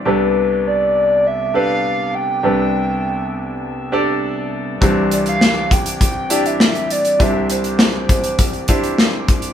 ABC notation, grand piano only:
X:1
M:4/4
L:1/8
Q:1/4=101
K:C
V:1 name="Grand piano"
[DGAB]4 z [DGAB]3 | [DGAB]4 z [DGAd]3 | [E,DGc]4 z [DEGd]3 | [DEGc]4 z [DEGc]3 |]
V:2 name="Grand piano" clef=bass
[C,,C,]8 | [C,,C,]8 | [C,,C,]8 | [C,,C,]8 |]